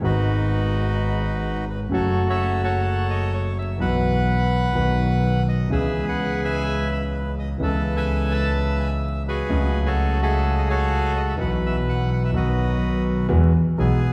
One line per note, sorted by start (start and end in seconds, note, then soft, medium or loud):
0.00 1.82 G#1 medium
0.00 1.82 G#2 medium
0.00 1.81 D#3 medium
0.00 1.82 G#3 soft
0.00 1.82 B3 soft
0.00 1.65 F#4 medium
0.00 1.83 F#4 medium
0.04 1.65 D#4 medium
0.04 1.65 B4 medium
1.70 1.80 B4 medium
1.89 3.70 F#1 medium
1.89 3.70 F#2 medium
1.89 3.69 C#3 medium
1.89 3.70 F#3 medium
1.89 3.70 A3 medium
1.89 2.82 F#4 medium
1.89 2.28 A4 medium
1.94 3.71 F#4 medium
1.94 2.26 C#5 medium
2.29 2.62 A4 medium
2.29 2.62 C#5 medium
2.29 2.62 E5 medium
2.64 3.53 A4 medium
2.64 3.33 C#5 medium
2.64 3.07 F#5 medium
3.10 3.34 D#5 medium
3.34 3.58 C#5 medium
3.58 3.79 E5 medium
3.78 4.70 B1 medium
3.78 4.70 B2 medium
3.78 4.69 E3 medium
3.78 4.70 F#3 soft
3.78 4.70 B3 soft
3.78 5.43 B4 medium
3.78 5.43 F#5 loud
3.82 4.71 F#4 medium
4.73 5.66 B1 medium
4.73 5.66 B2 medium
4.73 5.65 D#3 medium
4.73 5.66 F#3 soft
4.73 5.66 B3 medium
4.77 5.67 F#4 medium
5.49 5.70 D#5 medium
5.68 7.51 C#2 medium
5.68 7.52 C#2 medium
5.68 7.51 C#3 medium
5.68 7.50 E3 soft
5.68 7.51 B3 soft
5.68 7.52 C#4 medium
5.72 6.63 G#4 medium
5.72 7.52 G#4 medium
5.72 6.07 B4 medium
5.72 6.05 E5 medium
6.09 6.44 B4 medium
6.09 6.41 F#5 medium
6.45 7.35 B4 medium
6.45 6.90 E5 medium
6.45 6.88 G#5 loud
6.91 7.02 E5 medium
7.39 7.49 D#5 medium
7.58 9.40 C#2 medium
7.58 9.40 C#3 medium
7.58 9.39 E3 medium
7.58 9.39 B3 soft
7.58 9.40 C#4 medium
7.58 9.41 A4 medium
7.62 8.53 A4 medium
7.62 7.96 B4 medium
7.62 7.95 E5 medium
7.97 8.88 B4 medium
7.97 8.32 E5 medium
7.97 8.33 G#5 medium
8.32 9.23 E5 medium
8.32 8.76 A5 loud
8.80 8.90 G#5 medium
9.28 9.85 F#4 medium
9.28 10.18 G#4 medium
9.28 9.88 B4 medium
9.47 11.29 C#2 medium
9.47 11.29 C#3 medium
9.47 11.28 F#3 medium
9.47 11.29 A3 medium
9.47 11.29 C#4 soft
9.52 11.30 F#4 medium
9.86 10.69 F#4 medium
9.86 10.21 A4 medium
9.86 10.19 C#5 medium
10.22 11.12 G#4 medium
10.22 10.68 A4 medium
10.22 10.55 E5 medium
10.58 10.63 D#5 medium
10.70 11.36 F#4 medium
10.70 11.36 A4 medium
10.70 11.13 C#5 loud
11.16 11.21 D#5 medium
11.29 11.34 E5 medium
11.36 12.29 B1 medium
11.36 12.29 B2 medium
11.36 12.28 E3 medium
11.36 12.29 F#3 soft
11.36 12.29 B3 soft
11.36 12.31 B4 medium
11.36 11.51 F#5 medium
11.41 12.30 F#4 medium
11.66 11.76 E5 medium
11.89 12.10 F#5 medium
12.13 12.23 F#5 medium
12.25 12.36 E5 medium
12.32 13.25 B1 medium
12.32 13.26 B2 medium
12.32 13.24 D#3 soft
12.32 13.25 F#3 medium
12.32 13.26 B3 soft
12.32 13.26 F#4 medium
12.32 13.27 B4 medium
12.36 13.27 F#4 medium
12.36 13.04 D#5 medium
13.29 13.50 E2 medium
13.29 13.50 E3 medium
13.29 13.50 G#3 medium
13.29 13.50 B3 medium
13.29 13.50 F#4 medium
13.78 13.98 B1 medium
13.78 13.98 B2 medium
13.78 13.98 E3 soft
13.78 13.98 G#3 soft
13.78 13.98 B3 soft
13.78 14.13 B3 medium
13.78 13.98 F#4 medium
13.78 14.13 G#4 medium